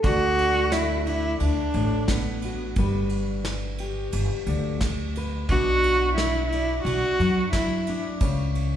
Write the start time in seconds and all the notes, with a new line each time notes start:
Already playing: A4
0.03 D2 D3 D4 F#4, kick, ride
0.38 ride
0.72 E4, muted steel-string acoustic guitar stroke, snare, ride
1.06 D4 E4, ride
1.40 D2 D4, ride
1.74 A1 A2, ride
2.08 B3, muted steel-string acoustic guitar stroke, kick, snare, ride
2.42 F#4, ride
2.76 G1 G3 B4, kick, ride
3.09 ride
3.45 muted steel-string acoustic guitar stroke, snare, ride
3.78 G4, ride
4.12 G1, ride
4.46 D2 D3, ride
4.81 muted steel-string acoustic guitar stroke, kick, snare, ride
5.15 B4, ride
5.49 B1 B2 D4 F#4, kick, ride
5.84 ride
6.15 E4, muted steel-string acoustic guitar stroke, snare, ride
6.48 E4
6.52 D4, ride
6.83 B1 F#4, ride
7.19 F#2 F#3, ride
7.51 E4, muted steel-string acoustic guitar stroke, kick, snare, ride
7.87 D4, ride
8.20 C#2 C#3 C#5, kick, ride
8.55 ride